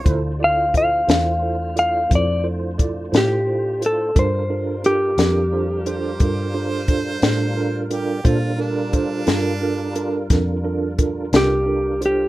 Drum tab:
HH |x-xx-xx-xx-x|x-xx-xx-xx-x|x-xx-xx-xx-x|
SD |---o-----o--|---o-----o--|---o--o--o--|
BD |o-o---o-o---|o-----o-o---|o-o---o-o---|